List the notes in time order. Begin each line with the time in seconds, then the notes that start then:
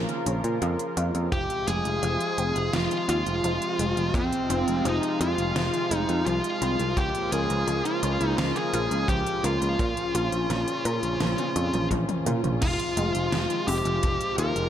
Already playing: C#3 F3 A#3 F4 A#4
0.09 closed hi-hat
0.26 A#1 C#4, closed hi-hat
0.44 A#2, closed hi-hat
0.62 F2 F3, closed hi-hat
0.79 closed hi-hat
0.97 F2 F4, closed hi-hat
1.15 F2, closed hi-hat
1.32 F1 C3 F3 G#3 F4 G4, kick, closed hi-hat
1.50 closed hi-hat
1.68 F1 G#3 G#4, closed hi-hat
1.85 F1, closed hi-hat
2.03 F1 F3, closed hi-hat
2.20 closed hi-hat
2.38 F1 C4, closed hi-hat
2.56 F1, closed hi-hat
2.73 F1 F3 F4, snare, closed hi-hat
2.91 closed hi-hat
3.09 D#2 F4, closed hi-hat
3.26 F1, closed hi-hat
3.44 F1 F3, closed hi-hat
3.62 closed hi-hat
3.79 F1 G#3, closed hi-hat
3.97 F1, closed hi-hat
4.14 F2 F3 C4, kick, closed hi-hat
4.32 closed hi-hat
4.50 F1 C4, closed hi-hat
4.68 F1, closed hi-hat
4.85 F1 F3 D#4, closed hi-hat
5.03 closed hi-hat
5.21 F2 F4, closed hi-hat
5.38 F1, closed hi-hat
5.56 F1 F3, snare, closed hi-hat
5.74 closed hi-hat
5.91 F1 G#3, closed hi-hat
5.97 D#4
6.09 F2, closed hi-hat
6.26 C2 F3 F4, closed hi-hat
6.44 closed hi-hat
6.62 C2 C4, closed hi-hat
6.79 C2, closed hi-hat
6.97 C#2 C#3 F3 A#3 G4, kick, closed hi-hat
7.15 closed hi-hat
7.32 C#2 A#3 G#4, closed hi-hat
7.50 C#2, closed hi-hat
7.68 C#2 F3, closed hi-hat
7.85 F4, closed hi-hat
8.03 C#2 C#4, closed hi-hat
8.21 C#2, closed hi-hat
8.38 C#2 F3 F4, snare, closed hi-hat
8.56 G#4, closed hi-hat
8.74 A#1 F4, closed hi-hat
8.91 C#2, closed hi-hat
9.08 C#2 F3 G4, kick, closed hi-hat
9.26 closed hi-hat
9.44 C#2 A#3 F4, closed hi-hat
9.62 C#2, closed hi-hat
9.79 A#2 C#3 F3 C#4, kick, closed hi-hat
9.97 closed hi-hat
10.15 A#1 F4, closed hi-hat
10.32 A#1, closed hi-hat
10.50 A#1 F3, snare, closed hi-hat
10.68 closed hi-hat
10.85 A#2 A#4, closed hi-hat
11.03 A#1, closed hi-hat
11.21 A#1 F3, snare, closed hi-hat, high tom
11.38 closed hi-hat, high tom
11.56 F2 C#4, closed hi-hat
11.74 A#1, closed hi-hat, mid tom
11.91 A#1 F3, kick, closed hi-hat, mid tom
12.09 closed hi-hat, mid tom
12.26 A#2 F4, closed hi-hat, mid tom
12.44 A#1, closed hi-hat, mid tom
12.62 F1 C3 F3 G#3 F4, kick, closed hi-hat, crash
12.79 closed hi-hat
12.97 F1 G#3, closed hi-hat
13.15 F1, closed hi-hat
13.32 F1 F3, snare, closed hi-hat
13.50 closed hi-hat
13.68 F1 C4 G4, open hi-hat
13.85 F1, closed hi-hat
14.03 F1 F3, kick, closed hi-hat
14.21 closed hi-hat
14.38 D#2 F4 A#4, closed hi-hat
14.56 F1, closed hi-hat